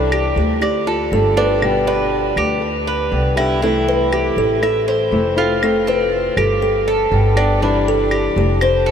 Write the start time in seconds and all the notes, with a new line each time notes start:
Already playing: C2 C3 E3 G3 D4 E4 A4
0.12 G4, claves
0.36 D2 G4
0.62 G4 D5, muted steel-string acoustic guitar stroke, claves
0.87 F4 A4
1.12 G1 D3 A3 C4 F4 A4
1.37 A3 C4 D4 F4 B4
1.61 B2 D3 G3 B3 G4, claves
1.87 B4 D5
2.36 D2 G4, claves
2.62 muted steel-string acoustic guitar stroke
2.87 B4
3.11 C2 D3 G3 B3 G4
3.36 D3 G3 B3 E4 G4, claves
3.61 C3 E3 A3 C4 E4 A4
3.89 B4
4.12 G4, claves
4.36 A1 A4
4.62 A4 E5, muted steel-string acoustic guitar stroke, claves
4.88 A4 C5
5.11 F1 E3 A3 C4 E4
5.36 A3 C4 E4 F4
5.60 C3 A3 C4 F4 A4, claves
5.87 C4 B4
6.37 G1 G4 A4, claves
6.62 A4, muted steel-string acoustic guitar stroke
6.88 A4
7.11 G1 D3 G3 B3 G4
7.36 G3 B3 D4 G4, claves
7.60 C3 E3 G3 D4 E4 G4
7.88 A4
8.11 G4, claves
8.36 F1 G4
8.61 C5, muted steel-string acoustic guitar stroke, claves
8.86 A4